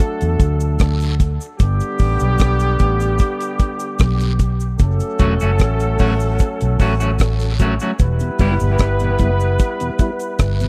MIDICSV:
0, 0, Header, 1, 6, 480
1, 0, Start_track
1, 0, Tempo, 800427
1, 958, Time_signature, 4, 2, 24, 8
1, 6408, End_track
2, 0, Start_track
2, 0, Title_t, "Clean electric guitar"
2, 0, Program_c, 0, 27
2, 3114, Note_on_c, 0, 54, 82
2, 3121, Note_on_c, 0, 57, 85
2, 3122, Note_on_c, 0, 61, 88
2, 3125, Note_on_c, 0, 66, 86
2, 3191, Note_off_c, 0, 54, 0
2, 3194, Note_off_c, 0, 57, 0
2, 3195, Note_off_c, 0, 61, 0
2, 3196, Note_off_c, 0, 66, 0
2, 3245, Note_on_c, 0, 66, 58
2, 3249, Note_on_c, 0, 61, 60
2, 3250, Note_on_c, 0, 57, 56
2, 3254, Note_on_c, 0, 54, 47
2, 3297, Note_off_c, 0, 66, 0
2, 3299, Note_off_c, 0, 61, 0
2, 3300, Note_off_c, 0, 57, 0
2, 3302, Note_off_c, 0, 54, 0
2, 3596, Note_on_c, 0, 54, 88
2, 3599, Note_on_c, 0, 57, 90
2, 3602, Note_on_c, 0, 61, 81
2, 3605, Note_on_c, 0, 66, 100
2, 3672, Note_off_c, 0, 54, 0
2, 3673, Note_off_c, 0, 57, 0
2, 3675, Note_off_c, 0, 61, 0
2, 3676, Note_off_c, 0, 66, 0
2, 4080, Note_on_c, 0, 54, 79
2, 4084, Note_on_c, 0, 57, 78
2, 4086, Note_on_c, 0, 61, 87
2, 4089, Note_on_c, 0, 66, 91
2, 4154, Note_off_c, 0, 54, 0
2, 4156, Note_off_c, 0, 57, 0
2, 4157, Note_off_c, 0, 61, 0
2, 4158, Note_off_c, 0, 66, 0
2, 4199, Note_on_c, 0, 66, 62
2, 4206, Note_on_c, 0, 61, 58
2, 4209, Note_on_c, 0, 57, 50
2, 4212, Note_on_c, 0, 54, 47
2, 4254, Note_off_c, 0, 66, 0
2, 4258, Note_off_c, 0, 61, 0
2, 4259, Note_off_c, 0, 57, 0
2, 4260, Note_off_c, 0, 54, 0
2, 4556, Note_on_c, 0, 54, 78
2, 4563, Note_on_c, 0, 57, 80
2, 4566, Note_on_c, 0, 61, 88
2, 4568, Note_on_c, 0, 66, 78
2, 4632, Note_off_c, 0, 54, 0
2, 4635, Note_off_c, 0, 57, 0
2, 4637, Note_off_c, 0, 61, 0
2, 4638, Note_off_c, 0, 66, 0
2, 4687, Note_on_c, 0, 66, 57
2, 4691, Note_on_c, 0, 61, 58
2, 4693, Note_on_c, 0, 57, 53
2, 4695, Note_on_c, 0, 54, 54
2, 4738, Note_off_c, 0, 66, 0
2, 4740, Note_off_c, 0, 61, 0
2, 4741, Note_off_c, 0, 57, 0
2, 4742, Note_off_c, 0, 54, 0
2, 5039, Note_on_c, 0, 55, 83
2, 5041, Note_on_c, 0, 59, 80
2, 5044, Note_on_c, 0, 64, 96
2, 5048, Note_on_c, 0, 67, 86
2, 5113, Note_off_c, 0, 55, 0
2, 5114, Note_off_c, 0, 59, 0
2, 5115, Note_off_c, 0, 64, 0
2, 5117, Note_off_c, 0, 67, 0
2, 6408, End_track
3, 0, Start_track
3, 0, Title_t, "Horn section"
3, 0, Program_c, 1, 61
3, 0, Note_on_c, 1, 54, 91
3, 0, Note_on_c, 1, 57, 92
3, 0, Note_on_c, 1, 62, 80
3, 0, Note_on_c, 1, 69, 100
3, 693, Note_off_c, 1, 54, 0
3, 693, Note_off_c, 1, 57, 0
3, 693, Note_off_c, 1, 62, 0
3, 693, Note_off_c, 1, 69, 0
3, 953, Note_on_c, 1, 55, 90
3, 953, Note_on_c, 1, 59, 90
3, 953, Note_on_c, 1, 67, 98
3, 955, Note_on_c, 1, 50, 88
3, 2611, Note_off_c, 1, 55, 0
3, 2611, Note_off_c, 1, 59, 0
3, 2611, Note_off_c, 1, 67, 0
3, 2612, Note_off_c, 1, 50, 0
3, 2875, Note_on_c, 1, 57, 80
3, 2875, Note_on_c, 1, 69, 86
3, 2876, Note_on_c, 1, 54, 84
3, 2876, Note_on_c, 1, 61, 82
3, 4531, Note_off_c, 1, 57, 0
3, 4531, Note_off_c, 1, 69, 0
3, 4532, Note_off_c, 1, 54, 0
3, 4532, Note_off_c, 1, 61, 0
3, 4798, Note_on_c, 1, 59, 90
3, 4798, Note_on_c, 1, 71, 97
3, 4799, Note_on_c, 1, 64, 83
3, 4800, Note_on_c, 1, 55, 78
3, 6408, Note_off_c, 1, 55, 0
3, 6408, Note_off_c, 1, 59, 0
3, 6408, Note_off_c, 1, 64, 0
3, 6408, Note_off_c, 1, 71, 0
3, 6408, End_track
4, 0, Start_track
4, 0, Title_t, "Tonewheel organ"
4, 0, Program_c, 2, 16
4, 4923, Note_on_c, 2, 47, 60
4, 4924, Note_on_c, 2, 40, 61
4, 4982, Note_off_c, 2, 47, 0
4, 4983, Note_off_c, 2, 40, 0
4, 5038, Note_on_c, 2, 55, 70
4, 5039, Note_on_c, 2, 59, 70
4, 5042, Note_on_c, 2, 64, 85
4, 5103, Note_off_c, 2, 55, 0
4, 5104, Note_off_c, 2, 59, 0
4, 5105, Note_off_c, 2, 64, 0
4, 5162, Note_on_c, 2, 47, 54
4, 5163, Note_on_c, 2, 40, 53
4, 5222, Note_off_c, 2, 40, 0
4, 5222, Note_off_c, 2, 47, 0
4, 5399, Note_on_c, 2, 47, 56
4, 5401, Note_on_c, 2, 40, 54
4, 5460, Note_off_c, 2, 47, 0
4, 5461, Note_off_c, 2, 40, 0
4, 5512, Note_on_c, 2, 55, 67
4, 5514, Note_on_c, 2, 59, 63
4, 5515, Note_on_c, 2, 64, 79
4, 5580, Note_off_c, 2, 55, 0
4, 5581, Note_off_c, 2, 59, 0
4, 5581, Note_off_c, 2, 64, 0
4, 5881, Note_on_c, 2, 40, 51
4, 5881, Note_on_c, 2, 47, 57
4, 5941, Note_off_c, 2, 40, 0
4, 5941, Note_off_c, 2, 47, 0
4, 5992, Note_on_c, 2, 55, 73
4, 5997, Note_on_c, 2, 59, 67
4, 6000, Note_on_c, 2, 64, 78
4, 6060, Note_off_c, 2, 55, 0
4, 6062, Note_off_c, 2, 59, 0
4, 6064, Note_off_c, 2, 64, 0
4, 6362, Note_on_c, 2, 40, 62
4, 6364, Note_on_c, 2, 47, 65
4, 6408, Note_off_c, 2, 40, 0
4, 6408, Note_off_c, 2, 47, 0
4, 6408, End_track
5, 0, Start_track
5, 0, Title_t, "Fingered electric bass"
5, 0, Program_c, 3, 33
5, 132, Note_on_c, 3, 40, 77
5, 234, Note_off_c, 3, 40, 0
5, 241, Note_on_c, 3, 38, 96
5, 462, Note_off_c, 3, 38, 0
5, 485, Note_on_c, 3, 38, 85
5, 824, Note_off_c, 3, 38, 0
5, 964, Note_on_c, 3, 31, 108
5, 1078, Note_off_c, 3, 31, 0
5, 1204, Note_on_c, 3, 33, 100
5, 1318, Note_off_c, 3, 33, 0
5, 1329, Note_on_c, 3, 35, 102
5, 1432, Note_off_c, 3, 35, 0
5, 1443, Note_on_c, 3, 35, 88
5, 1663, Note_off_c, 3, 35, 0
5, 1683, Note_on_c, 3, 33, 96
5, 1903, Note_off_c, 3, 33, 0
5, 2400, Note_on_c, 3, 35, 93
5, 2855, Note_off_c, 3, 35, 0
5, 2881, Note_on_c, 3, 30, 103
5, 2996, Note_off_c, 3, 30, 0
5, 3121, Note_on_c, 3, 28, 86
5, 3236, Note_off_c, 3, 28, 0
5, 3253, Note_on_c, 3, 30, 93
5, 3354, Note_off_c, 3, 30, 0
5, 3361, Note_on_c, 3, 33, 92
5, 3581, Note_off_c, 3, 33, 0
5, 3603, Note_on_c, 3, 33, 93
5, 3822, Note_off_c, 3, 33, 0
5, 3970, Note_on_c, 3, 35, 81
5, 4072, Note_off_c, 3, 35, 0
5, 4082, Note_on_c, 3, 33, 95
5, 4301, Note_off_c, 3, 33, 0
5, 4323, Note_on_c, 3, 33, 84
5, 4661, Note_off_c, 3, 33, 0
5, 4800, Note_on_c, 3, 28, 110
5, 4915, Note_off_c, 3, 28, 0
5, 5040, Note_on_c, 3, 30, 87
5, 5155, Note_off_c, 3, 30, 0
5, 5166, Note_on_c, 3, 31, 95
5, 5270, Note_off_c, 3, 31, 0
5, 5279, Note_on_c, 3, 31, 78
5, 5500, Note_off_c, 3, 31, 0
5, 5520, Note_on_c, 3, 30, 102
5, 5740, Note_off_c, 3, 30, 0
5, 6237, Note_on_c, 3, 31, 80
5, 6408, Note_off_c, 3, 31, 0
5, 6408, End_track
6, 0, Start_track
6, 0, Title_t, "Drums"
6, 0, Note_on_c, 9, 36, 105
6, 0, Note_on_c, 9, 42, 82
6, 58, Note_off_c, 9, 42, 0
6, 59, Note_off_c, 9, 36, 0
6, 125, Note_on_c, 9, 42, 67
6, 128, Note_on_c, 9, 69, 47
6, 185, Note_off_c, 9, 42, 0
6, 188, Note_off_c, 9, 69, 0
6, 238, Note_on_c, 9, 36, 103
6, 238, Note_on_c, 9, 69, 53
6, 239, Note_on_c, 9, 42, 69
6, 298, Note_off_c, 9, 36, 0
6, 298, Note_off_c, 9, 69, 0
6, 299, Note_off_c, 9, 42, 0
6, 361, Note_on_c, 9, 69, 72
6, 364, Note_on_c, 9, 42, 34
6, 421, Note_off_c, 9, 69, 0
6, 424, Note_off_c, 9, 42, 0
6, 474, Note_on_c, 9, 69, 74
6, 474, Note_on_c, 9, 74, 79
6, 479, Note_on_c, 9, 36, 109
6, 480, Note_on_c, 9, 42, 76
6, 486, Note_on_c, 9, 37, 103
6, 534, Note_off_c, 9, 69, 0
6, 534, Note_off_c, 9, 74, 0
6, 539, Note_off_c, 9, 36, 0
6, 540, Note_off_c, 9, 42, 0
6, 546, Note_off_c, 9, 37, 0
6, 599, Note_on_c, 9, 69, 44
6, 612, Note_on_c, 9, 42, 52
6, 659, Note_off_c, 9, 69, 0
6, 672, Note_off_c, 9, 42, 0
6, 719, Note_on_c, 9, 36, 98
6, 719, Note_on_c, 9, 42, 70
6, 719, Note_on_c, 9, 69, 52
6, 779, Note_off_c, 9, 36, 0
6, 779, Note_off_c, 9, 42, 0
6, 779, Note_off_c, 9, 69, 0
6, 843, Note_on_c, 9, 69, 68
6, 903, Note_off_c, 9, 69, 0
6, 955, Note_on_c, 9, 69, 69
6, 959, Note_on_c, 9, 36, 114
6, 960, Note_on_c, 9, 42, 76
6, 1015, Note_off_c, 9, 69, 0
6, 1019, Note_off_c, 9, 36, 0
6, 1020, Note_off_c, 9, 42, 0
6, 1081, Note_on_c, 9, 69, 61
6, 1087, Note_on_c, 9, 42, 45
6, 1141, Note_off_c, 9, 69, 0
6, 1147, Note_off_c, 9, 42, 0
6, 1191, Note_on_c, 9, 69, 49
6, 1197, Note_on_c, 9, 46, 51
6, 1198, Note_on_c, 9, 36, 101
6, 1251, Note_off_c, 9, 69, 0
6, 1257, Note_off_c, 9, 46, 0
6, 1258, Note_off_c, 9, 36, 0
6, 1316, Note_on_c, 9, 69, 74
6, 1325, Note_on_c, 9, 42, 38
6, 1376, Note_off_c, 9, 69, 0
6, 1385, Note_off_c, 9, 42, 0
6, 1429, Note_on_c, 9, 69, 80
6, 1438, Note_on_c, 9, 36, 102
6, 1439, Note_on_c, 9, 42, 95
6, 1448, Note_on_c, 9, 37, 115
6, 1489, Note_off_c, 9, 69, 0
6, 1498, Note_off_c, 9, 36, 0
6, 1499, Note_off_c, 9, 42, 0
6, 1508, Note_off_c, 9, 37, 0
6, 1556, Note_on_c, 9, 69, 58
6, 1565, Note_on_c, 9, 42, 52
6, 1616, Note_off_c, 9, 69, 0
6, 1625, Note_off_c, 9, 42, 0
6, 1674, Note_on_c, 9, 69, 49
6, 1677, Note_on_c, 9, 42, 72
6, 1679, Note_on_c, 9, 36, 92
6, 1733, Note_off_c, 9, 69, 0
6, 1737, Note_off_c, 9, 42, 0
6, 1739, Note_off_c, 9, 36, 0
6, 1799, Note_on_c, 9, 69, 68
6, 1806, Note_on_c, 9, 42, 35
6, 1859, Note_off_c, 9, 69, 0
6, 1866, Note_off_c, 9, 42, 0
6, 1909, Note_on_c, 9, 69, 70
6, 1918, Note_on_c, 9, 36, 97
6, 1918, Note_on_c, 9, 42, 82
6, 1969, Note_off_c, 9, 69, 0
6, 1978, Note_off_c, 9, 36, 0
6, 1978, Note_off_c, 9, 42, 0
6, 2042, Note_on_c, 9, 42, 67
6, 2046, Note_on_c, 9, 69, 55
6, 2102, Note_off_c, 9, 42, 0
6, 2106, Note_off_c, 9, 69, 0
6, 2154, Note_on_c, 9, 69, 49
6, 2156, Note_on_c, 9, 36, 98
6, 2158, Note_on_c, 9, 42, 73
6, 2213, Note_off_c, 9, 69, 0
6, 2216, Note_off_c, 9, 36, 0
6, 2218, Note_off_c, 9, 42, 0
6, 2277, Note_on_c, 9, 69, 73
6, 2281, Note_on_c, 9, 42, 36
6, 2337, Note_off_c, 9, 69, 0
6, 2341, Note_off_c, 9, 42, 0
6, 2391, Note_on_c, 9, 69, 79
6, 2391, Note_on_c, 9, 74, 73
6, 2397, Note_on_c, 9, 36, 101
6, 2397, Note_on_c, 9, 42, 69
6, 2403, Note_on_c, 9, 37, 111
6, 2451, Note_off_c, 9, 69, 0
6, 2451, Note_off_c, 9, 74, 0
6, 2457, Note_off_c, 9, 36, 0
6, 2457, Note_off_c, 9, 42, 0
6, 2463, Note_off_c, 9, 37, 0
6, 2519, Note_on_c, 9, 69, 42
6, 2526, Note_on_c, 9, 42, 55
6, 2579, Note_off_c, 9, 69, 0
6, 2586, Note_off_c, 9, 42, 0
6, 2634, Note_on_c, 9, 42, 67
6, 2635, Note_on_c, 9, 69, 54
6, 2636, Note_on_c, 9, 36, 99
6, 2694, Note_off_c, 9, 42, 0
6, 2695, Note_off_c, 9, 69, 0
6, 2696, Note_off_c, 9, 36, 0
6, 2759, Note_on_c, 9, 69, 68
6, 2819, Note_off_c, 9, 69, 0
6, 2872, Note_on_c, 9, 69, 69
6, 2875, Note_on_c, 9, 42, 68
6, 2876, Note_on_c, 9, 36, 105
6, 2932, Note_off_c, 9, 69, 0
6, 2935, Note_off_c, 9, 42, 0
6, 2936, Note_off_c, 9, 36, 0
6, 2998, Note_on_c, 9, 69, 57
6, 3001, Note_on_c, 9, 42, 48
6, 3058, Note_off_c, 9, 69, 0
6, 3061, Note_off_c, 9, 42, 0
6, 3111, Note_on_c, 9, 69, 51
6, 3115, Note_on_c, 9, 42, 73
6, 3117, Note_on_c, 9, 36, 103
6, 3171, Note_off_c, 9, 69, 0
6, 3175, Note_off_c, 9, 42, 0
6, 3177, Note_off_c, 9, 36, 0
6, 3238, Note_on_c, 9, 69, 76
6, 3243, Note_on_c, 9, 42, 38
6, 3298, Note_off_c, 9, 69, 0
6, 3303, Note_off_c, 9, 42, 0
6, 3351, Note_on_c, 9, 69, 79
6, 3357, Note_on_c, 9, 36, 104
6, 3358, Note_on_c, 9, 42, 87
6, 3367, Note_on_c, 9, 37, 113
6, 3411, Note_off_c, 9, 69, 0
6, 3417, Note_off_c, 9, 36, 0
6, 3418, Note_off_c, 9, 42, 0
6, 3427, Note_off_c, 9, 37, 0
6, 3476, Note_on_c, 9, 69, 59
6, 3479, Note_on_c, 9, 42, 47
6, 3536, Note_off_c, 9, 69, 0
6, 3539, Note_off_c, 9, 42, 0
6, 3591, Note_on_c, 9, 69, 50
6, 3594, Note_on_c, 9, 46, 70
6, 3598, Note_on_c, 9, 36, 97
6, 3650, Note_off_c, 9, 69, 0
6, 3654, Note_off_c, 9, 46, 0
6, 3658, Note_off_c, 9, 36, 0
6, 3718, Note_on_c, 9, 69, 66
6, 3778, Note_off_c, 9, 69, 0
6, 3830, Note_on_c, 9, 69, 75
6, 3838, Note_on_c, 9, 36, 102
6, 3838, Note_on_c, 9, 42, 82
6, 3890, Note_off_c, 9, 69, 0
6, 3898, Note_off_c, 9, 36, 0
6, 3898, Note_off_c, 9, 42, 0
6, 3962, Note_on_c, 9, 42, 70
6, 3963, Note_on_c, 9, 69, 52
6, 4022, Note_off_c, 9, 42, 0
6, 4023, Note_off_c, 9, 69, 0
6, 4074, Note_on_c, 9, 69, 50
6, 4076, Note_on_c, 9, 36, 99
6, 4076, Note_on_c, 9, 46, 52
6, 4134, Note_off_c, 9, 69, 0
6, 4136, Note_off_c, 9, 36, 0
6, 4136, Note_off_c, 9, 46, 0
6, 4199, Note_on_c, 9, 69, 76
6, 4202, Note_on_c, 9, 42, 37
6, 4259, Note_off_c, 9, 69, 0
6, 4262, Note_off_c, 9, 42, 0
6, 4310, Note_on_c, 9, 69, 77
6, 4310, Note_on_c, 9, 74, 75
6, 4318, Note_on_c, 9, 36, 99
6, 4319, Note_on_c, 9, 42, 76
6, 4325, Note_on_c, 9, 37, 107
6, 4370, Note_off_c, 9, 69, 0
6, 4370, Note_off_c, 9, 74, 0
6, 4377, Note_off_c, 9, 36, 0
6, 4379, Note_off_c, 9, 42, 0
6, 4385, Note_off_c, 9, 37, 0
6, 4434, Note_on_c, 9, 69, 43
6, 4446, Note_on_c, 9, 42, 54
6, 4494, Note_off_c, 9, 69, 0
6, 4506, Note_off_c, 9, 42, 0
6, 4551, Note_on_c, 9, 69, 56
6, 4555, Note_on_c, 9, 42, 64
6, 4556, Note_on_c, 9, 36, 92
6, 4611, Note_off_c, 9, 69, 0
6, 4615, Note_off_c, 9, 42, 0
6, 4616, Note_off_c, 9, 36, 0
6, 4675, Note_on_c, 9, 69, 73
6, 4685, Note_on_c, 9, 42, 31
6, 4735, Note_off_c, 9, 69, 0
6, 4745, Note_off_c, 9, 42, 0
6, 4791, Note_on_c, 9, 69, 70
6, 4795, Note_on_c, 9, 42, 72
6, 4796, Note_on_c, 9, 36, 102
6, 4851, Note_off_c, 9, 69, 0
6, 4854, Note_off_c, 9, 42, 0
6, 4856, Note_off_c, 9, 36, 0
6, 4914, Note_on_c, 9, 69, 61
6, 4921, Note_on_c, 9, 42, 46
6, 4974, Note_off_c, 9, 69, 0
6, 4981, Note_off_c, 9, 42, 0
6, 5028, Note_on_c, 9, 46, 50
6, 5031, Note_on_c, 9, 69, 54
6, 5034, Note_on_c, 9, 36, 101
6, 5088, Note_off_c, 9, 46, 0
6, 5091, Note_off_c, 9, 69, 0
6, 5094, Note_off_c, 9, 36, 0
6, 5156, Note_on_c, 9, 69, 71
6, 5216, Note_off_c, 9, 69, 0
6, 5268, Note_on_c, 9, 69, 79
6, 5272, Note_on_c, 9, 42, 92
6, 5274, Note_on_c, 9, 36, 109
6, 5280, Note_on_c, 9, 37, 119
6, 5328, Note_off_c, 9, 69, 0
6, 5332, Note_off_c, 9, 42, 0
6, 5334, Note_off_c, 9, 36, 0
6, 5340, Note_off_c, 9, 37, 0
6, 5394, Note_on_c, 9, 69, 52
6, 5398, Note_on_c, 9, 42, 48
6, 5454, Note_off_c, 9, 69, 0
6, 5458, Note_off_c, 9, 42, 0
6, 5508, Note_on_c, 9, 69, 52
6, 5509, Note_on_c, 9, 42, 76
6, 5514, Note_on_c, 9, 36, 88
6, 5568, Note_off_c, 9, 69, 0
6, 5569, Note_off_c, 9, 42, 0
6, 5574, Note_off_c, 9, 36, 0
6, 5638, Note_on_c, 9, 69, 70
6, 5698, Note_off_c, 9, 69, 0
6, 5750, Note_on_c, 9, 69, 66
6, 5754, Note_on_c, 9, 42, 79
6, 5755, Note_on_c, 9, 36, 106
6, 5810, Note_off_c, 9, 69, 0
6, 5814, Note_off_c, 9, 42, 0
6, 5815, Note_off_c, 9, 36, 0
6, 5878, Note_on_c, 9, 42, 61
6, 5881, Note_on_c, 9, 69, 54
6, 5938, Note_off_c, 9, 42, 0
6, 5941, Note_off_c, 9, 69, 0
6, 5990, Note_on_c, 9, 42, 74
6, 5991, Note_on_c, 9, 69, 55
6, 5992, Note_on_c, 9, 36, 100
6, 6050, Note_off_c, 9, 42, 0
6, 6051, Note_off_c, 9, 69, 0
6, 6052, Note_off_c, 9, 36, 0
6, 6114, Note_on_c, 9, 42, 32
6, 6115, Note_on_c, 9, 69, 71
6, 6174, Note_off_c, 9, 42, 0
6, 6175, Note_off_c, 9, 69, 0
6, 6229, Note_on_c, 9, 42, 80
6, 6230, Note_on_c, 9, 69, 76
6, 6230, Note_on_c, 9, 74, 76
6, 6233, Note_on_c, 9, 36, 112
6, 6235, Note_on_c, 9, 37, 107
6, 6289, Note_off_c, 9, 42, 0
6, 6290, Note_off_c, 9, 69, 0
6, 6290, Note_off_c, 9, 74, 0
6, 6293, Note_off_c, 9, 36, 0
6, 6295, Note_off_c, 9, 37, 0
6, 6356, Note_on_c, 9, 69, 46
6, 6359, Note_on_c, 9, 42, 52
6, 6408, Note_off_c, 9, 42, 0
6, 6408, Note_off_c, 9, 69, 0
6, 6408, End_track
0, 0, End_of_file